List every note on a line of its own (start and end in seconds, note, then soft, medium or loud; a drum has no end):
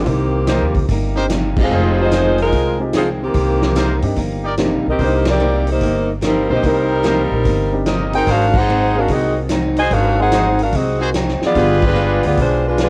0.03 0.57 C2 medium
0.03 0.34 C3 soft
0.03 0.89 D#3 medium
0.03 0.35 G3 soft
0.03 0.35 A#3 soft
0.03 0.89 A#3 medium
0.03 0.07 F4 medium
0.03 0.89 G4 medium
0.03 kick soft
0.03 open hi-hat soft
0.07 0.89 C4 medium
0.07 0.36 D#4 medium
0.47 0.76 C3 medium
0.47 0.76 G3 medium
0.47 0.77 A#3 medium
0.47 0.66 D#4 medium
0.47 0.77 D#4 medium
0.47 0.66 G4 medium
0.47 0.66 A#4 medium
0.47 0.66 C5 medium
0.47 snare medium
0.47 closed hi-hat medium
0.61 0.74 D#2 medium
0.74 0.88 C#2 medium
0.74 kick medium
0.74 open hi-hat soft
0.88 1.67 G1 medium
0.88 1.18 C3 medium
0.88 1.18 G3 medium
0.88 1.18 A#3 soft
0.88 1.19 D#4 medium
0.88 kick soft
0.88 open hi-hat soft
1.16 1.28 A#3 medium
1.16 1.29 C4 medium
1.16 1.29 D4 medium
1.16 1.25 D#4 medium
1.16 1.29 D#4 medium
1.16 1.25 G4 medium
1.16 1.29 G4 medium
1.16 1.25 A#4 medium
1.16 1.25 C5 loud
1.29 1.58 C3 medium
1.29 1.59 G3 medium
1.29 1.59 A#3 medium
1.29 1.59 D#4 medium
1.29 snare medium
1.29 closed hi-hat medium
1.56 1.70 G#3 medium
1.56 1.70 C4 medium
1.56 1.70 D#4 medium
1.56 1.70 F4 medium
1.56 1.70 G4 medium
1.56 kick medium
1.56 crash medium
1.62 1.98 G#3 medium
1.62 1.98 C4 medium
1.62 1.98 D#4 medium
1.62 1.98 F4 medium
1.71 2.49 F1 medium
1.71 1.99 F2 soft
1.71 2.00 D#3 soft
1.71 2.00 G#3 soft
1.71 2.00 C4 soft
1.71 2.86 D#4 medium
1.71 2.86 F4 medium
1.71 2.86 G#4 medium
1.71 2.86 C5 loud
1.98 2.11 G#3 medium
1.98 2.11 C4 medium
1.98 2.11 D#4 medium
1.98 2.11 F4 medium
1.98 2.11 G4 medium
2.02 2.41 G#3 medium
2.02 2.41 D#4 medium
2.02 2.41 F4 medium
2.02 2.41 C5 loud
2.11 2.40 F2 medium
2.11 2.40 D#3 medium
2.11 2.41 G#3 medium
2.11 2.41 C4 medium
2.11 snare medium
2.11 closed hi-hat medium
2.38 open hi-hat soft
2.42 2.79 G#3 medium
2.42 2.79 D#4 medium
2.42 2.79 F4 medium
2.42 2.79 A#4 medium
2.52 3.31 C2 medium
2.52 2.81 F2 soft
2.52 2.81 D#3 soft
2.52 2.82 G#3 medium
2.52 2.82 C4 soft
2.52 kick soft
2.52 open hi-hat soft
2.80 2.92 G#3 medium
2.80 2.92 C4 medium
2.80 2.93 D#4 medium
2.80 2.93 F4 medium
2.80 2.93 G4 medium
2.93 3.22 F2 medium
2.93 3.22 D#3 medium
2.93 3.22 G#3 medium
2.93 3.23 C4 medium
2.93 3.08 C4 medium
2.93 3.08 D#4 medium
2.93 3.08 G#4 medium
2.93 snare medium
2.93 closed hi-hat medium
2.97 3.09 F3 medium
3.24 4.01 D#3 medium
3.24 4.01 A#3 medium
3.24 4.01 C4 medium
3.24 4.01 G4 medium
3.34 3.99 C2 medium
3.34 3.63 C3 soft
3.34 3.63 G3 soft
3.34 3.64 A#3 soft
3.34 3.64 D#4 soft
3.34 kick soft
3.34 open hi-hat soft
3.62 snare medium
3.75 4.04 C3 medium
3.75 4.05 G3 medium
3.75 4.05 A#3 medium
3.75 3.94 D#4 medium
3.75 4.05 D#4 medium
3.75 3.94 G4 medium
3.75 3.94 A#4 medium
3.75 3.94 C5 medium
3.75 snare medium
3.75 closed hi-hat medium
4.02 4.16 G2 medium
4.02 4.15 A#3 medium
4.02 4.16 C4 medium
4.02 4.16 D4 medium
4.02 4.16 D#4 medium
4.02 4.16 G4 medium
4.02 open hi-hat soft
4.16 4.68 G1 medium
4.16 4.45 C3 medium
4.16 4.46 G3 medium
4.16 4.46 A#3 medium
4.16 4.46 D#4 medium
4.16 kick soft
4.16 open hi-hat soft
4.44 4.54 D#4 medium
4.44 4.54 G4 medium
4.44 4.54 A#4 medium
4.44 4.54 D5 medium
4.57 4.87 C3 medium
4.57 4.86 G3 medium
4.57 4.82 A#3 medium
4.57 4.87 A#3 medium
4.57 4.83 C4 medium
4.57 4.83 D4 medium
4.57 4.87 D#4 medium
4.57 4.83 D#4 medium
4.57 4.83 G4 medium
4.57 snare medium
4.57 closed hi-hat medium
4.72 4.85 A#1 medium
4.86 4.98 B1 medium
4.86 5.01 C4 medium
4.90 5.01 G4 medium
4.90 5.01 A#4 medium
4.90 5.01 D#5 medium
4.99 5.77 C2 medium
4.99 5.28 C3 soft
4.99 5.28 G3 soft
4.99 5.24 A#3 medium
4.99 5.29 A#3 soft
4.99 5.24 C4 soft
4.99 5.24 D4 medium
4.99 5.18 D#4 medium
4.99 5.24 D#4 soft
4.99 5.29 D#4 soft
4.99 5.17 G4 medium
4.99 5.24 G4 medium
4.99 5.17 A#4 medium
4.99 5.17 C5 medium
4.99 kick soft
4.99 open hi-hat soft
5.04 5.29 A#3 medium
5.04 5.29 D#4 medium
5.04 5.29 G4 medium
5.04 5.29 C5 medium
5.25 snare medium
5.25 ride medium
5.30 5.66 C4 medium
5.30 5.67 G4 medium
5.30 5.66 A#4 medium
5.30 5.66 D5 loud
5.40 5.68 C3 medium
5.40 5.69 G3 medium
5.40 5.69 A#3 medium
5.40 5.69 D#4 medium
5.67 open hi-hat soft
5.71 6.11 A#3 medium
5.71 6.10 D#4 medium
5.71 6.11 G4 medium
5.71 6.11 C5 medium
5.81 6.45 G1 medium
5.81 6.10 C3 soft
5.81 6.10 G3 soft
5.81 6.11 A#3 medium
5.81 6.11 D#4 medium
5.81 kick soft
5.81 open hi-hat soft
6.21 6.50 C3 medium
6.21 6.51 G3 medium
6.21 6.51 A#3 medium
6.21 6.51 D#4 medium
6.21 snare medium
6.21 closed hi-hat medium
6.26 6.50 G3 medium
6.26 6.49 C4 medium
6.26 6.49 D#4 medium
6.26 6.50 A#4 medium
6.49 6.62 B1 medium
6.49 6.62 A#3 medium
6.49 6.62 C4 medium
6.49 6.62 D4 medium
6.49 7.02 D#4 medium
6.49 6.62 D#4 medium
6.49 7.02 G4 medium
6.49 7.02 A#4 medium
6.49 6.62 A#4 medium
6.49 7.02 C5 medium
6.49 6.65 C5 medium
6.53 6.65 A#3 medium
6.53 6.66 D#4 medium
6.53 6.65 G4 medium
6.62 7.27 C2 medium
6.62 6.91 C3 soft
6.62 6.92 G3 soft
6.62 6.92 A#3 soft
6.62 6.92 D#4 soft
6.62 kick soft
6.62 open hi-hat medium
6.67 7.88 G3 medium
6.67 7.88 C4 medium
6.67 7.88 D#4 medium
6.67 7.88 A#4 medium
7.03 7.32 C3 medium
7.03 7.33 G3 medium
7.03 7.33 A#3 medium
7.03 7.23 D#4 medium
7.03 7.33 D#4 medium
7.03 7.23 G4 medium
7.03 7.23 A#4 medium
7.03 7.23 C5 medium
7.03 snare medium
7.03 closed hi-hat medium
7.31 7.44 A#1 medium
7.44 8.23 G1 medium
7.44 7.73 C3 soft
7.44 7.74 G3 medium
7.44 7.74 A#3 medium
7.44 7.74 D#4 medium
7.44 kick soft
7.44 open hi-hat soft
7.72 7.85 A#3 medium
7.72 7.85 C4 medium
7.72 7.85 D4 medium
7.72 7.85 D#4 medium
7.72 7.86 G4 medium
7.86 8.15 C3 medium
7.86 8.15 G3 medium
7.86 8.15 A#3 medium
7.86 8.26 D#4 medium
7.86 8.15 D#4 medium
7.86 8.27 G4 medium
7.86 8.27 A#4 medium
7.86 8.28 D#5 medium
7.86 snare medium
7.86 closed hi-hat soft
8.13 8.26 A#3 medium
8.13 8.26 C4 medium
8.13 8.26 D#4 medium
8.13 8.28 D#4 medium
8.13 8.26 F#4 medium
8.13 8.26 G#4 medium
8.13 8.28 A#4 medium
8.13 8.28 C5 medium
8.13 8.28 G5 loud
8.13 open hi-hat soft
8.27 9.05 G#1 medium
8.27 8.56 G#2 soft
8.27 8.56 F#3 soft
8.27 8.57 C4 soft
8.27 8.56 D4 medium
8.27 8.46 D#4 medium
8.27 8.57 D#4 soft
8.27 8.46 F#4 medium
8.27 8.46 G#4 medium
8.27 8.56 A#4 medium
8.27 8.46 C5 medium
8.27 kick soft
8.27 open hi-hat soft
8.31 8.56 F#4 medium
8.31 8.56 F5 loud
8.54 8.97 D#4 medium
8.54 8.97 G#4 medium
8.54 8.97 C5 medium
8.54 8.97 F#5 loud
8.54 kick medium
8.54 crash medium
8.69 8.97 G#2 medium
8.69 8.97 F#3 medium
8.69 8.98 C4 medium
8.69 8.98 D#4 medium
8.95 9.47 A#3 medium
8.95 9.47 C4 medium
8.95 9.11 D4 medium
8.95 9.47 D#4 medium
8.95 9.48 F#4 medium
8.95 9.11 F#4 medium
8.95 9.48 G#4 medium
8.95 9.11 A#4 medium
8.95 9.11 F5 medium
9.08 9.87 C2 medium
9.08 9.38 G#2 soft
9.08 9.38 F#3 soft
9.08 9.39 C4 soft
9.08 9.36 C4 medium
9.08 9.39 D#4 soft
9.08 9.36 G#4 medium
9.08 kick soft
9.08 open hi-hat medium
9.12 9.36 F#4 medium
9.12 9.36 D#5 medium
9.49 9.79 G#2 medium
9.49 9.79 F#3 medium
9.49 9.80 C4 medium
9.49 9.80 D#4 medium
9.49 snare medium
9.49 closed hi-hat medium
9.77 10.29 D#4 medium
9.77 10.29 F#4 medium
9.77 9.92 F#4 medium
9.77 10.29 G#4 medium
9.77 10.29 C5 medium
9.77 9.92 C5 medium
9.77 9.92 D#5 medium
9.77 9.92 G#5 loud
9.77 open hi-hat soft
9.91 10.69 G#1 medium
9.91 10.20 G#2 soft
9.91 10.20 F#3 soft
9.91 10.21 C4 soft
9.91 10.19 D4 medium
9.91 10.21 D#4 soft
9.91 10.19 F#4 medium
9.91 10.20 A#4 medium
9.91 10.20 F5 medium
9.91 kick soft
9.91 open hi-hat soft
10.18 10.31 A#3 medium
10.18 10.31 C4 medium
10.18 10.31 D#4 medium
10.18 10.58 D#4 medium
10.18 10.31 F#4 medium
10.18 10.32 G#4 medium
10.18 10.58 G#4 medium
10.18 10.58 C5 medium
10.18 10.58 F#5 loud
10.32 10.61 G#2 medium
10.32 10.61 F#3 medium
10.32 10.61 C4 medium
10.32 10.50 D#4 medium
10.32 10.61 D#4 medium
10.32 10.50 F#4 medium
10.32 10.51 G#4 medium
10.32 10.50 C5 medium
10.32 snare medium
10.32 closed hi-hat medium
10.59 10.74 D4 medium
10.59 10.74 A#4 medium
10.59 10.74 F5 medium
10.59 open hi-hat soft
10.63 10.74 F#4 medium
10.72 11.37 C2 medium
10.72 11.02 G#2 soft
10.72 11.03 F#3 soft
10.72 11.03 C4 soft
10.72 11.02 C4 medium
10.72 11.03 D#4 soft
10.72 11.02 F#4 medium
10.72 11.02 G#4 medium
10.72 11.02 D#5 medium
10.72 kick soft
10.72 open hi-hat soft
11.00 11.13 A#3 soft
11.00 11.13 C4 soft
11.00 11.10 D#4 medium
11.00 11.13 D#4 soft
11.00 11.10 F#4 medium
11.00 11.14 F#4 medium
11.00 11.10 G#4 medium
11.00 11.14 G#4 medium
11.00 11.10 C5 loud
11.14 11.43 G#2 medium
11.14 11.43 F#3 medium
11.14 11.43 C4 medium
11.14 11.43 D#4 medium
11.14 snare medium
11.14 closed hi-hat medium
11.28 snare soft
11.41 11.81 F4 medium
11.41 11.81 D5 loud
11.41 muted upright bass stroke soft
11.41 snare soft
11.45 11.82 B3 medium
11.45 11.82 G#4 medium
11.55 12.19 G1 medium
11.55 11.84 G3 soft
11.55 11.80 G#3 medium
11.55 11.84 B3 medium
11.55 11.80 B3 medium
11.55 11.80 D4 medium
11.55 12.70 F4 loud
11.55 11.80 F4 medium
11.55 11.84 F4 soft
11.55 12.70 G4 loud
11.55 11.80 G4 medium
11.55 12.70 G#4 loud
11.55 11.85 G#4 soft
11.55 12.70 B4 loud
11.55 kick soft
11.55 open hi-hat soft
11.82 kick medium
11.82 crash medium
11.86 12.23 G#3 medium
11.86 12.23 D4 medium
11.86 12.23 F4 medium
11.86 12.23 B4 medium
11.96 12.25 G3 medium
11.96 12.24 B3 medium
11.96 12.25 F4 medium
11.96 12.25 G#4 medium
12.23 12.36 D2 medium
12.23 12.38 B3 medium
12.23 12.38 F4 medium
12.23 12.38 G#4 medium
12.23 12.38 D5 medium
12.23 open hi-hat soft
12.37 12.89 B1 medium
12.37 12.66 G3 soft
12.37 12.66 B3 soft
12.37 12.67 F4 soft
12.37 12.67 G#4 medium
12.37 kick soft
12.37 open hi-hat medium
12.41 12.65 G#3 medium
12.41 12.65 D4 medium
12.41 12.65 F4 medium
12.41 12.65 C5 medium
12.68 12.80 G#3 medium
12.68 12.80 D4 medium
12.68 12.80 F4 medium
12.68 12.80 B4 medium
12.78 12.89 G3 medium
12.78 12.89 B3 medium
12.78 12.89 D4 medium
12.78 12.89 F4 medium
12.78 12.89 G#4 medium
12.78 snare medium
12.78 closed hi-hat medium
12.82 12.89 G#3 medium
12.82 12.89 F4 medium
12.82 12.89 B4 medium